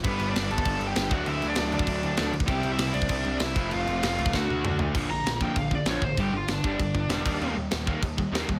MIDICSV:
0, 0, Header, 1, 6, 480
1, 0, Start_track
1, 0, Tempo, 307062
1, 63, Time_signature, 4, 2, 24, 8
1, 13428, End_track
2, 0, Start_track
2, 0, Title_t, "Lead electric guitar"
2, 0, Program_c, 0, 29
2, 71, Note_on_c, 0, 71, 114
2, 116, Note_on_c, 0, 59, 80
2, 425, Note_off_c, 0, 59, 0
2, 436, Note_off_c, 0, 71, 0
2, 468, Note_on_c, 0, 74, 98
2, 476, Note_on_c, 0, 62, 72
2, 785, Note_off_c, 0, 62, 0
2, 800, Note_on_c, 0, 81, 116
2, 812, Note_on_c, 0, 69, 88
2, 814, Note_off_c, 0, 74, 0
2, 1347, Note_off_c, 0, 81, 0
2, 1354, Note_off_c, 0, 69, 0
2, 1362, Note_on_c, 0, 79, 112
2, 1389, Note_on_c, 0, 67, 89
2, 1718, Note_off_c, 0, 67, 0
2, 1740, Note_off_c, 0, 79, 0
2, 1764, Note_on_c, 0, 78, 100
2, 1777, Note_on_c, 0, 66, 73
2, 1982, Note_off_c, 0, 66, 0
2, 1993, Note_off_c, 0, 78, 0
2, 1999, Note_on_c, 0, 76, 123
2, 2019, Note_on_c, 0, 64, 90
2, 2315, Note_on_c, 0, 74, 94
2, 2323, Note_off_c, 0, 76, 0
2, 2333, Note_off_c, 0, 64, 0
2, 2338, Note_on_c, 0, 62, 78
2, 2659, Note_off_c, 0, 74, 0
2, 2671, Note_off_c, 0, 62, 0
2, 2714, Note_on_c, 0, 62, 90
2, 2725, Note_on_c, 0, 74, 94
2, 3600, Note_off_c, 0, 62, 0
2, 3603, Note_off_c, 0, 74, 0
2, 3860, Note_on_c, 0, 67, 87
2, 3878, Note_on_c, 0, 79, 110
2, 4209, Note_off_c, 0, 67, 0
2, 4246, Note_off_c, 0, 79, 0
2, 4253, Note_on_c, 0, 76, 97
2, 4260, Note_on_c, 0, 64, 67
2, 4586, Note_off_c, 0, 76, 0
2, 4587, Note_off_c, 0, 64, 0
2, 4587, Note_on_c, 0, 62, 87
2, 4595, Note_on_c, 0, 74, 111
2, 5265, Note_off_c, 0, 62, 0
2, 5342, Note_off_c, 0, 74, 0
2, 5353, Note_on_c, 0, 76, 94
2, 5370, Note_on_c, 0, 64, 72
2, 5787, Note_off_c, 0, 76, 0
2, 5796, Note_off_c, 0, 64, 0
2, 5816, Note_on_c, 0, 65, 86
2, 5838, Note_on_c, 0, 77, 107
2, 6257, Note_off_c, 0, 65, 0
2, 6269, Note_off_c, 0, 77, 0
2, 6309, Note_on_c, 0, 77, 102
2, 6326, Note_on_c, 0, 65, 77
2, 6754, Note_off_c, 0, 65, 0
2, 6788, Note_on_c, 0, 66, 72
2, 6791, Note_off_c, 0, 77, 0
2, 6797, Note_on_c, 0, 78, 72
2, 7448, Note_off_c, 0, 66, 0
2, 7449, Note_off_c, 0, 78, 0
2, 7975, Note_on_c, 0, 82, 102
2, 8438, Note_off_c, 0, 82, 0
2, 8481, Note_on_c, 0, 79, 79
2, 8698, Note_off_c, 0, 79, 0
2, 8729, Note_on_c, 0, 77, 88
2, 8987, Note_off_c, 0, 77, 0
2, 8987, Note_on_c, 0, 74, 79
2, 9192, Note_off_c, 0, 74, 0
2, 9218, Note_on_c, 0, 73, 84
2, 9444, Note_off_c, 0, 73, 0
2, 9444, Note_on_c, 0, 72, 80
2, 9661, Note_off_c, 0, 72, 0
2, 9693, Note_on_c, 0, 67, 95
2, 9906, Note_off_c, 0, 67, 0
2, 9952, Note_on_c, 0, 65, 81
2, 10207, Note_off_c, 0, 65, 0
2, 10207, Note_on_c, 0, 62, 91
2, 10405, Note_off_c, 0, 62, 0
2, 10437, Note_on_c, 0, 62, 105
2, 11808, Note_off_c, 0, 62, 0
2, 13428, End_track
3, 0, Start_track
3, 0, Title_t, "Overdriven electric guitar"
3, 0, Program_c, 1, 29
3, 3407, Note_on_c, 1, 50, 97
3, 3424, Note_on_c, 1, 54, 89
3, 3437, Note_on_c, 1, 57, 94
3, 3457, Note_on_c, 1, 62, 82
3, 3635, Note_off_c, 1, 50, 0
3, 3643, Note_off_c, 1, 54, 0
3, 3650, Note_off_c, 1, 57, 0
3, 3660, Note_off_c, 1, 62, 0
3, 13428, End_track
4, 0, Start_track
4, 0, Title_t, "Overdriven electric guitar"
4, 0, Program_c, 2, 29
4, 48, Note_on_c, 2, 43, 98
4, 61, Note_on_c, 2, 50, 105
4, 71, Note_on_c, 2, 55, 98
4, 80, Note_on_c, 2, 59, 97
4, 95, Note_on_c, 2, 62, 88
4, 759, Note_off_c, 2, 43, 0
4, 759, Note_off_c, 2, 62, 0
4, 765, Note_off_c, 2, 50, 0
4, 765, Note_on_c, 2, 62, 81
4, 770, Note_off_c, 2, 59, 0
4, 771, Note_off_c, 2, 55, 0
4, 789, Note_on_c, 2, 59, 81
4, 791, Note_on_c, 2, 55, 86
4, 805, Note_on_c, 2, 50, 77
4, 806, Note_on_c, 2, 43, 71
4, 1702, Note_off_c, 2, 50, 0
4, 1716, Note_off_c, 2, 62, 0
4, 1721, Note_on_c, 2, 50, 104
4, 1728, Note_off_c, 2, 55, 0
4, 1728, Note_off_c, 2, 59, 0
4, 1736, Note_off_c, 2, 43, 0
4, 1748, Note_on_c, 2, 54, 97
4, 1755, Note_on_c, 2, 57, 108
4, 1766, Note_on_c, 2, 62, 115
4, 2420, Note_off_c, 2, 50, 0
4, 2428, Note_off_c, 2, 54, 0
4, 2439, Note_on_c, 2, 50, 72
4, 2442, Note_off_c, 2, 57, 0
4, 2447, Note_on_c, 2, 54, 83
4, 2455, Note_off_c, 2, 62, 0
4, 2461, Note_on_c, 2, 57, 70
4, 2472, Note_on_c, 2, 62, 78
4, 3629, Note_off_c, 2, 50, 0
4, 3634, Note_off_c, 2, 54, 0
4, 3640, Note_off_c, 2, 57, 0
4, 3646, Note_off_c, 2, 62, 0
4, 3867, Note_on_c, 2, 48, 86
4, 3883, Note_on_c, 2, 55, 97
4, 3891, Note_on_c, 2, 60, 105
4, 3901, Note_on_c, 2, 64, 105
4, 4563, Note_off_c, 2, 64, 0
4, 4582, Note_on_c, 2, 64, 101
4, 4583, Note_off_c, 2, 48, 0
4, 4586, Note_off_c, 2, 60, 0
4, 4591, Note_off_c, 2, 55, 0
4, 4605, Note_on_c, 2, 60, 87
4, 4626, Note_on_c, 2, 55, 75
4, 4628, Note_on_c, 2, 48, 72
4, 5539, Note_off_c, 2, 64, 0
4, 5551, Note_off_c, 2, 60, 0
4, 5561, Note_off_c, 2, 55, 0
4, 5562, Note_off_c, 2, 48, 0
4, 5572, Note_on_c, 2, 53, 102
4, 5581, Note_on_c, 2, 57, 105
4, 5599, Note_on_c, 2, 60, 114
4, 5605, Note_on_c, 2, 65, 109
4, 6262, Note_off_c, 2, 53, 0
4, 6279, Note_off_c, 2, 57, 0
4, 6280, Note_on_c, 2, 53, 71
4, 6288, Note_off_c, 2, 60, 0
4, 6291, Note_off_c, 2, 65, 0
4, 6300, Note_on_c, 2, 57, 69
4, 6315, Note_on_c, 2, 60, 76
4, 6327, Note_on_c, 2, 65, 89
4, 6749, Note_off_c, 2, 53, 0
4, 6759, Note_off_c, 2, 57, 0
4, 6763, Note_on_c, 2, 50, 104
4, 6766, Note_off_c, 2, 60, 0
4, 6772, Note_off_c, 2, 65, 0
4, 6783, Note_on_c, 2, 57, 114
4, 6801, Note_on_c, 2, 62, 103
4, 6819, Note_on_c, 2, 66, 118
4, 7464, Note_off_c, 2, 66, 0
4, 7470, Note_off_c, 2, 50, 0
4, 7474, Note_off_c, 2, 62, 0
4, 7480, Note_off_c, 2, 57, 0
4, 7483, Note_on_c, 2, 66, 97
4, 7493, Note_on_c, 2, 62, 94
4, 7509, Note_on_c, 2, 57, 87
4, 7529, Note_on_c, 2, 50, 77
4, 7710, Note_off_c, 2, 66, 0
4, 7715, Note_off_c, 2, 62, 0
4, 7723, Note_off_c, 2, 50, 0
4, 7723, Note_off_c, 2, 57, 0
4, 7731, Note_on_c, 2, 46, 91
4, 7742, Note_on_c, 2, 50, 87
4, 7753, Note_on_c, 2, 53, 101
4, 7955, Note_off_c, 2, 46, 0
4, 7960, Note_off_c, 2, 50, 0
4, 7966, Note_off_c, 2, 53, 0
4, 7986, Note_on_c, 2, 46, 75
4, 7990, Note_on_c, 2, 50, 92
4, 8193, Note_off_c, 2, 46, 0
4, 8195, Note_off_c, 2, 50, 0
4, 8223, Note_on_c, 2, 46, 70
4, 8229, Note_on_c, 2, 50, 72
4, 8432, Note_off_c, 2, 46, 0
4, 8435, Note_off_c, 2, 50, 0
4, 8465, Note_on_c, 2, 46, 88
4, 8476, Note_on_c, 2, 50, 96
4, 8482, Note_on_c, 2, 53, 95
4, 8682, Note_off_c, 2, 46, 0
4, 8688, Note_off_c, 2, 50, 0
4, 8691, Note_off_c, 2, 53, 0
4, 8699, Note_on_c, 2, 46, 94
4, 8707, Note_on_c, 2, 50, 102
4, 8910, Note_off_c, 2, 46, 0
4, 8914, Note_off_c, 2, 50, 0
4, 8939, Note_on_c, 2, 46, 71
4, 8941, Note_on_c, 2, 50, 81
4, 9151, Note_off_c, 2, 46, 0
4, 9151, Note_off_c, 2, 50, 0
4, 9180, Note_on_c, 2, 46, 95
4, 9189, Note_on_c, 2, 50, 97
4, 9203, Note_on_c, 2, 53, 120
4, 9401, Note_off_c, 2, 46, 0
4, 9405, Note_off_c, 2, 50, 0
4, 9412, Note_off_c, 2, 53, 0
4, 9429, Note_on_c, 2, 46, 82
4, 9437, Note_on_c, 2, 50, 87
4, 9636, Note_off_c, 2, 46, 0
4, 9640, Note_off_c, 2, 50, 0
4, 9672, Note_on_c, 2, 43, 77
4, 9675, Note_on_c, 2, 50, 86
4, 9681, Note_on_c, 2, 55, 105
4, 9877, Note_off_c, 2, 43, 0
4, 9889, Note_off_c, 2, 50, 0
4, 9893, Note_off_c, 2, 55, 0
4, 9896, Note_on_c, 2, 43, 72
4, 9905, Note_on_c, 2, 50, 77
4, 10111, Note_off_c, 2, 43, 0
4, 10115, Note_off_c, 2, 50, 0
4, 10155, Note_on_c, 2, 43, 64
4, 10155, Note_on_c, 2, 50, 75
4, 10351, Note_off_c, 2, 43, 0
4, 10361, Note_off_c, 2, 50, 0
4, 10370, Note_on_c, 2, 43, 95
4, 10384, Note_on_c, 2, 55, 106
4, 10386, Note_on_c, 2, 50, 93
4, 10598, Note_off_c, 2, 43, 0
4, 10605, Note_off_c, 2, 55, 0
4, 10606, Note_off_c, 2, 50, 0
4, 10622, Note_on_c, 2, 43, 73
4, 10626, Note_on_c, 2, 50, 91
4, 10835, Note_off_c, 2, 43, 0
4, 10837, Note_off_c, 2, 50, 0
4, 10864, Note_on_c, 2, 43, 77
4, 10872, Note_on_c, 2, 50, 88
4, 11066, Note_off_c, 2, 43, 0
4, 11080, Note_off_c, 2, 50, 0
4, 11085, Note_on_c, 2, 43, 98
4, 11106, Note_on_c, 2, 55, 104
4, 11107, Note_on_c, 2, 50, 95
4, 11317, Note_off_c, 2, 43, 0
4, 11327, Note_off_c, 2, 55, 0
4, 11328, Note_off_c, 2, 50, 0
4, 11336, Note_on_c, 2, 51, 98
4, 11346, Note_on_c, 2, 55, 90
4, 11350, Note_on_c, 2, 58, 104
4, 11563, Note_off_c, 2, 51, 0
4, 11568, Note_off_c, 2, 55, 0
4, 11570, Note_off_c, 2, 58, 0
4, 11582, Note_on_c, 2, 51, 81
4, 11591, Note_on_c, 2, 55, 94
4, 11608, Note_on_c, 2, 58, 98
4, 11789, Note_off_c, 2, 51, 0
4, 11802, Note_off_c, 2, 55, 0
4, 11808, Note_on_c, 2, 51, 78
4, 11819, Note_off_c, 2, 58, 0
4, 11821, Note_on_c, 2, 55, 87
4, 12030, Note_off_c, 2, 51, 0
4, 12037, Note_off_c, 2, 55, 0
4, 12056, Note_on_c, 2, 51, 84
4, 12070, Note_on_c, 2, 55, 83
4, 12274, Note_off_c, 2, 51, 0
4, 12281, Note_off_c, 2, 55, 0
4, 12302, Note_on_c, 2, 51, 88
4, 12311, Note_on_c, 2, 55, 87
4, 12319, Note_on_c, 2, 58, 114
4, 12510, Note_off_c, 2, 51, 0
4, 12518, Note_off_c, 2, 55, 0
4, 12529, Note_on_c, 2, 51, 83
4, 12536, Note_off_c, 2, 58, 0
4, 12537, Note_on_c, 2, 55, 89
4, 12752, Note_off_c, 2, 51, 0
4, 12756, Note_off_c, 2, 55, 0
4, 12779, Note_on_c, 2, 51, 78
4, 12786, Note_on_c, 2, 55, 83
4, 12980, Note_off_c, 2, 51, 0
4, 12982, Note_off_c, 2, 55, 0
4, 12999, Note_on_c, 2, 51, 93
4, 13001, Note_on_c, 2, 55, 96
4, 13021, Note_on_c, 2, 58, 115
4, 13231, Note_off_c, 2, 51, 0
4, 13233, Note_off_c, 2, 55, 0
4, 13248, Note_off_c, 2, 58, 0
4, 13250, Note_on_c, 2, 51, 80
4, 13251, Note_on_c, 2, 55, 83
4, 13428, Note_off_c, 2, 51, 0
4, 13428, Note_off_c, 2, 55, 0
4, 13428, End_track
5, 0, Start_track
5, 0, Title_t, "Picked electric bass"
5, 0, Program_c, 3, 34
5, 63, Note_on_c, 3, 31, 87
5, 290, Note_off_c, 3, 31, 0
5, 303, Note_on_c, 3, 31, 97
5, 530, Note_off_c, 3, 31, 0
5, 548, Note_on_c, 3, 31, 84
5, 772, Note_off_c, 3, 31, 0
5, 798, Note_on_c, 3, 31, 90
5, 1017, Note_off_c, 3, 31, 0
5, 1027, Note_on_c, 3, 31, 101
5, 1241, Note_off_c, 3, 31, 0
5, 1250, Note_on_c, 3, 31, 88
5, 1482, Note_off_c, 3, 31, 0
5, 1493, Note_on_c, 3, 31, 100
5, 1723, Note_off_c, 3, 31, 0
5, 1733, Note_on_c, 3, 38, 92
5, 1962, Note_off_c, 3, 38, 0
5, 1978, Note_on_c, 3, 38, 96
5, 2205, Note_off_c, 3, 38, 0
5, 2243, Note_on_c, 3, 38, 94
5, 2448, Note_off_c, 3, 38, 0
5, 2458, Note_on_c, 3, 38, 95
5, 2684, Note_off_c, 3, 38, 0
5, 2710, Note_on_c, 3, 38, 92
5, 2916, Note_off_c, 3, 38, 0
5, 2926, Note_on_c, 3, 38, 99
5, 3157, Note_off_c, 3, 38, 0
5, 3179, Note_on_c, 3, 38, 97
5, 3403, Note_off_c, 3, 38, 0
5, 3423, Note_on_c, 3, 38, 96
5, 3632, Note_off_c, 3, 38, 0
5, 3641, Note_on_c, 3, 38, 100
5, 3860, Note_off_c, 3, 38, 0
5, 3870, Note_on_c, 3, 36, 98
5, 4107, Note_off_c, 3, 36, 0
5, 4120, Note_on_c, 3, 36, 98
5, 4341, Note_off_c, 3, 36, 0
5, 4350, Note_on_c, 3, 36, 91
5, 4587, Note_off_c, 3, 36, 0
5, 4600, Note_on_c, 3, 36, 96
5, 4824, Note_off_c, 3, 36, 0
5, 4834, Note_on_c, 3, 36, 100
5, 5068, Note_off_c, 3, 36, 0
5, 5092, Note_on_c, 3, 36, 87
5, 5317, Note_off_c, 3, 36, 0
5, 5328, Note_on_c, 3, 36, 110
5, 5549, Note_off_c, 3, 36, 0
5, 5558, Note_on_c, 3, 29, 98
5, 5790, Note_off_c, 3, 29, 0
5, 5838, Note_on_c, 3, 29, 93
5, 6036, Note_off_c, 3, 29, 0
5, 6045, Note_on_c, 3, 29, 99
5, 6273, Note_off_c, 3, 29, 0
5, 6298, Note_on_c, 3, 29, 93
5, 6520, Note_off_c, 3, 29, 0
5, 6553, Note_on_c, 3, 37, 94
5, 6768, Note_off_c, 3, 37, 0
5, 6774, Note_on_c, 3, 38, 109
5, 6998, Note_off_c, 3, 38, 0
5, 7019, Note_on_c, 3, 38, 97
5, 7241, Note_off_c, 3, 38, 0
5, 7252, Note_on_c, 3, 38, 98
5, 7477, Note_off_c, 3, 38, 0
5, 7499, Note_on_c, 3, 38, 106
5, 7721, Note_off_c, 3, 38, 0
5, 7732, Note_on_c, 3, 34, 86
5, 7897, Note_off_c, 3, 34, 0
5, 7985, Note_on_c, 3, 34, 87
5, 8146, Note_off_c, 3, 34, 0
5, 8213, Note_on_c, 3, 34, 85
5, 8547, Note_off_c, 3, 34, 0
5, 8695, Note_on_c, 3, 34, 94
5, 9028, Note_off_c, 3, 34, 0
5, 9151, Note_on_c, 3, 34, 92
5, 9326, Note_off_c, 3, 34, 0
5, 9408, Note_on_c, 3, 33, 90
5, 9577, Note_off_c, 3, 33, 0
5, 9646, Note_on_c, 3, 31, 91
5, 9816, Note_off_c, 3, 31, 0
5, 9873, Note_on_c, 3, 31, 93
5, 10047, Note_off_c, 3, 31, 0
5, 10112, Note_on_c, 3, 31, 94
5, 10287, Note_off_c, 3, 31, 0
5, 10383, Note_on_c, 3, 31, 81
5, 10548, Note_off_c, 3, 31, 0
5, 10623, Note_on_c, 3, 31, 90
5, 10788, Note_off_c, 3, 31, 0
5, 10854, Note_on_c, 3, 31, 98
5, 11022, Note_off_c, 3, 31, 0
5, 11068, Note_on_c, 3, 28, 101
5, 11246, Note_off_c, 3, 28, 0
5, 11342, Note_on_c, 3, 39, 96
5, 11508, Note_off_c, 3, 39, 0
5, 11585, Note_on_c, 3, 39, 96
5, 11751, Note_off_c, 3, 39, 0
5, 11829, Note_on_c, 3, 39, 91
5, 11993, Note_off_c, 3, 39, 0
5, 12083, Note_on_c, 3, 39, 93
5, 12411, Note_off_c, 3, 39, 0
5, 12533, Note_on_c, 3, 39, 92
5, 12872, Note_off_c, 3, 39, 0
5, 13008, Note_on_c, 3, 39, 94
5, 13181, Note_off_c, 3, 39, 0
5, 13270, Note_on_c, 3, 39, 95
5, 13428, Note_off_c, 3, 39, 0
5, 13428, End_track
6, 0, Start_track
6, 0, Title_t, "Drums"
6, 60, Note_on_c, 9, 49, 87
6, 71, Note_on_c, 9, 36, 117
6, 217, Note_off_c, 9, 49, 0
6, 227, Note_off_c, 9, 36, 0
6, 303, Note_on_c, 9, 49, 74
6, 460, Note_off_c, 9, 49, 0
6, 557, Note_on_c, 9, 49, 96
6, 568, Note_on_c, 9, 38, 127
6, 714, Note_off_c, 9, 49, 0
6, 725, Note_off_c, 9, 38, 0
6, 792, Note_on_c, 9, 49, 72
6, 907, Note_on_c, 9, 36, 98
6, 949, Note_off_c, 9, 49, 0
6, 1017, Note_on_c, 9, 49, 102
6, 1025, Note_off_c, 9, 36, 0
6, 1025, Note_on_c, 9, 36, 121
6, 1174, Note_off_c, 9, 49, 0
6, 1181, Note_off_c, 9, 36, 0
6, 1263, Note_on_c, 9, 49, 71
6, 1419, Note_off_c, 9, 49, 0
6, 1494, Note_on_c, 9, 49, 85
6, 1505, Note_on_c, 9, 38, 120
6, 1650, Note_off_c, 9, 49, 0
6, 1661, Note_off_c, 9, 38, 0
6, 1729, Note_on_c, 9, 49, 61
6, 1735, Note_on_c, 9, 36, 98
6, 1885, Note_off_c, 9, 49, 0
6, 1892, Note_off_c, 9, 36, 0
6, 1970, Note_on_c, 9, 49, 86
6, 2127, Note_off_c, 9, 49, 0
6, 2219, Note_on_c, 9, 49, 65
6, 2375, Note_off_c, 9, 49, 0
6, 2429, Note_on_c, 9, 49, 98
6, 2440, Note_on_c, 9, 38, 126
6, 2585, Note_off_c, 9, 49, 0
6, 2596, Note_off_c, 9, 38, 0
6, 2689, Note_on_c, 9, 49, 68
6, 2804, Note_on_c, 9, 36, 107
6, 2845, Note_off_c, 9, 49, 0
6, 2922, Note_on_c, 9, 49, 101
6, 2923, Note_off_c, 9, 36, 0
6, 2923, Note_on_c, 9, 36, 113
6, 3078, Note_off_c, 9, 49, 0
6, 3080, Note_off_c, 9, 36, 0
6, 3172, Note_on_c, 9, 49, 63
6, 3329, Note_off_c, 9, 49, 0
6, 3390, Note_on_c, 9, 49, 87
6, 3401, Note_on_c, 9, 38, 111
6, 3547, Note_off_c, 9, 49, 0
6, 3558, Note_off_c, 9, 38, 0
6, 3647, Note_on_c, 9, 49, 64
6, 3755, Note_on_c, 9, 36, 92
6, 3803, Note_off_c, 9, 49, 0
6, 3875, Note_off_c, 9, 36, 0
6, 3875, Note_on_c, 9, 36, 113
6, 3877, Note_on_c, 9, 49, 85
6, 4032, Note_off_c, 9, 36, 0
6, 4033, Note_off_c, 9, 49, 0
6, 4113, Note_on_c, 9, 49, 72
6, 4269, Note_off_c, 9, 49, 0
6, 4353, Note_on_c, 9, 49, 110
6, 4364, Note_on_c, 9, 38, 125
6, 4510, Note_off_c, 9, 49, 0
6, 4520, Note_off_c, 9, 38, 0
6, 4591, Note_on_c, 9, 49, 84
6, 4717, Note_on_c, 9, 36, 92
6, 4748, Note_off_c, 9, 49, 0
6, 4826, Note_on_c, 9, 49, 103
6, 4836, Note_off_c, 9, 36, 0
6, 4836, Note_on_c, 9, 36, 104
6, 4983, Note_off_c, 9, 49, 0
6, 4992, Note_off_c, 9, 36, 0
6, 5072, Note_on_c, 9, 49, 63
6, 5228, Note_off_c, 9, 49, 0
6, 5308, Note_on_c, 9, 49, 103
6, 5319, Note_on_c, 9, 38, 124
6, 5464, Note_off_c, 9, 49, 0
6, 5475, Note_off_c, 9, 38, 0
6, 5562, Note_on_c, 9, 36, 99
6, 5566, Note_on_c, 9, 49, 68
6, 5719, Note_off_c, 9, 36, 0
6, 5722, Note_off_c, 9, 49, 0
6, 5800, Note_on_c, 9, 49, 83
6, 5956, Note_off_c, 9, 49, 0
6, 6055, Note_on_c, 9, 49, 66
6, 6212, Note_off_c, 9, 49, 0
6, 6296, Note_on_c, 9, 49, 93
6, 6307, Note_on_c, 9, 38, 118
6, 6452, Note_off_c, 9, 49, 0
6, 6463, Note_off_c, 9, 38, 0
6, 6541, Note_on_c, 9, 49, 69
6, 6656, Note_on_c, 9, 36, 102
6, 6697, Note_off_c, 9, 49, 0
6, 6776, Note_off_c, 9, 36, 0
6, 6776, Note_on_c, 9, 36, 106
6, 6785, Note_on_c, 9, 38, 73
6, 6932, Note_off_c, 9, 36, 0
6, 6942, Note_off_c, 9, 38, 0
6, 7040, Note_on_c, 9, 48, 70
6, 7196, Note_off_c, 9, 48, 0
6, 7262, Note_on_c, 9, 45, 112
6, 7419, Note_off_c, 9, 45, 0
6, 7489, Note_on_c, 9, 43, 106
6, 7646, Note_off_c, 9, 43, 0
6, 7732, Note_on_c, 9, 49, 63
6, 7732, Note_on_c, 9, 57, 126
6, 7734, Note_on_c, 9, 36, 106
6, 7888, Note_off_c, 9, 49, 0
6, 7888, Note_off_c, 9, 57, 0
6, 7890, Note_off_c, 9, 36, 0
6, 8225, Note_on_c, 9, 49, 65
6, 8236, Note_on_c, 9, 38, 114
6, 8381, Note_off_c, 9, 49, 0
6, 8392, Note_off_c, 9, 38, 0
6, 8452, Note_on_c, 9, 36, 97
6, 8608, Note_off_c, 9, 36, 0
6, 8686, Note_on_c, 9, 49, 67
6, 8692, Note_on_c, 9, 36, 114
6, 8842, Note_off_c, 9, 49, 0
6, 8848, Note_off_c, 9, 36, 0
6, 8928, Note_on_c, 9, 36, 84
6, 9084, Note_off_c, 9, 36, 0
6, 9152, Note_on_c, 9, 49, 67
6, 9163, Note_on_c, 9, 38, 113
6, 9308, Note_off_c, 9, 49, 0
6, 9319, Note_off_c, 9, 38, 0
6, 9408, Note_on_c, 9, 36, 80
6, 9564, Note_off_c, 9, 36, 0
6, 9652, Note_on_c, 9, 36, 91
6, 9661, Note_on_c, 9, 49, 63
6, 9809, Note_off_c, 9, 36, 0
6, 9817, Note_off_c, 9, 49, 0
6, 10127, Note_on_c, 9, 49, 61
6, 10138, Note_on_c, 9, 38, 123
6, 10283, Note_off_c, 9, 49, 0
6, 10294, Note_off_c, 9, 38, 0
6, 10380, Note_on_c, 9, 36, 92
6, 10536, Note_off_c, 9, 36, 0
6, 10622, Note_on_c, 9, 49, 66
6, 10623, Note_on_c, 9, 36, 109
6, 10779, Note_off_c, 9, 36, 0
6, 10779, Note_off_c, 9, 49, 0
6, 10859, Note_on_c, 9, 36, 73
6, 11015, Note_off_c, 9, 36, 0
6, 11089, Note_on_c, 9, 49, 57
6, 11100, Note_on_c, 9, 38, 110
6, 11245, Note_off_c, 9, 49, 0
6, 11256, Note_off_c, 9, 38, 0
6, 11343, Note_on_c, 9, 36, 107
6, 11353, Note_on_c, 9, 49, 106
6, 11499, Note_off_c, 9, 36, 0
6, 11509, Note_off_c, 9, 49, 0
6, 11590, Note_on_c, 9, 49, 61
6, 11746, Note_off_c, 9, 49, 0
6, 12051, Note_on_c, 9, 49, 68
6, 12062, Note_on_c, 9, 38, 125
6, 12208, Note_off_c, 9, 49, 0
6, 12218, Note_off_c, 9, 38, 0
6, 12306, Note_on_c, 9, 36, 100
6, 12463, Note_off_c, 9, 36, 0
6, 12546, Note_on_c, 9, 36, 113
6, 12547, Note_on_c, 9, 49, 73
6, 12702, Note_off_c, 9, 36, 0
6, 12703, Note_off_c, 9, 49, 0
6, 12790, Note_on_c, 9, 36, 89
6, 12946, Note_off_c, 9, 36, 0
6, 13045, Note_on_c, 9, 49, 60
6, 13056, Note_on_c, 9, 38, 119
6, 13202, Note_off_c, 9, 49, 0
6, 13213, Note_off_c, 9, 38, 0
6, 13270, Note_on_c, 9, 36, 81
6, 13426, Note_off_c, 9, 36, 0
6, 13428, End_track
0, 0, End_of_file